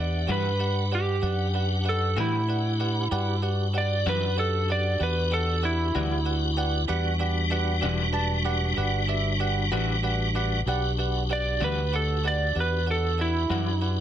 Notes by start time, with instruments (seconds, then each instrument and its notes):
Already playing: fingered electric bass E2, tonewheel organ D4 G4 F#5, tine electric piano G4 B4 D5 F#5
0.00 electric slide guitar D5
0.27 fingered electric bass G2, clean electric guitar E3 G3 D4 F#4, tine electric piano G4 B4 D5 F#5
0.32 electric slide guitar B4
0.59 tine electric piano G4 B4 D5 F#5
0.92 tine electric piano G4 B4 D5 F#5, electric slide guitar G4
1.22 fingered electric bass F#2, tine electric piano G4 B4 D5 F#5
1.54 tine electric piano G4 B4 D5 F#5
1.85 tine electric piano G4 B4 D5 F#5
1.89 electric slide guitar A4
2.16 fingered electric bass A2, clean electric guitar E3 G3 D4 F#4, electric slide guitar E4, tine electric piano G4 B4 D5 G5
2.48 tine electric piano G4 B4 D5 F#5
2.80 tine electric piano G4 B4 D5 F#5
3.11 fingered electric bass G2, tonewheel organ D4 F#4 G4, tine electric piano G4 B4 D5 F#5
3.42 tine electric piano G4 B4 D5 F#5
3.73 tine electric piano G4 B4 D5 F#5
3.78 electric slide guitar D5
4.06 fingered electric bass F#2, clean electric guitar E3 G3 D4 F#4, tine electric piano G4 B4 D5 F#5, electric slide guitar B4
4.37 tine electric piano G4 B4 D5 F#5, electric slide guitar A4
4.69 tine electric piano G4 B4 D5 F#5, electric slide guitar D5
5.00 fingered electric bass E2, tine electric piano G4 B4 D5 F#5, electric slide guitar B4
5.31 tine electric piano G4 B4 D5 F#5, electric slide guitar A4
5.62 electric slide guitar E4, tine electric piano G4 B4 D5 F#5
5.95 fingered electric bass D2, clean electric guitar E3 G3 D4 F#4, tine electric piano G4 B4 D5 F#5
6.25 tine electric piano G4 B4 D5 F#5
6.57 tine electric piano G4 B4 D5 F#5
6.87 fingered electric bass E2, tonewheel organ G3 D4 F#4, tine electric piano G4 B4 D5 F#5
7.19 tine electric piano G4 B4 D5 F#5
7.50 tine electric piano G4 B4 D5 F#5
7.81 fingered electric bass E1, clean electric guitar E3 G3 D4 F#4, tine electric piano G4 B4 D5 F#5
8.13 tine electric piano G4 B4 D5 A5
8.45 tine electric piano G4 B4 D5 F#5
8.77 fingered electric bass G1, tine electric piano G4 B4 D5 F#5
9.08 tine electric piano G4 B4 D5 E5
9.40 tine electric piano G4 B4 D5 F#5
9.71 fingered electric bass A1, clean electric guitar E3 G3 D4 F#4, tine electric piano G4 B4 D5 F#5
10.03 tine electric piano G4 B4 D5 F#5
10.35 tine electric piano G4 B4 D5 F#5
10.66 fingered electric bass B1, tonewheel organ D4 F#4 G4, tine electric piano G4 B4 D5 F#5
10.98 tine electric piano G4 B4 D5 F#5
11.30 tine electric piano G4 B4 D5 F#5, electric slide guitar D5
11.60 fingered electric bass D2, clean electric guitar E3 G3 D4 F#4, tine electric piano G4 B4 D5 F#5, electric slide guitar B4
11.93 tine electric piano G4 B4 D5 F#5, electric slide guitar A4
12.24 tine electric piano G4 B4 D5 F#5, electric slide guitar D5
12.55 fingered electric bass E2, tine electric piano G4 B4 D5 F#5
12.60 electric slide guitar B4
12.86 tine electric piano G4 B4 D5 F#5
12.91 electric slide guitar A4
13.18 electric slide guitar E4, tine electric piano G4 B4 D5 F#5
13.50 fingered electric bass F#2, clean electric guitar E3 G3 D4 F#4, tine electric piano G4 B4 D5 F#5
13.81 tine electric piano G4 B4 D5 F#5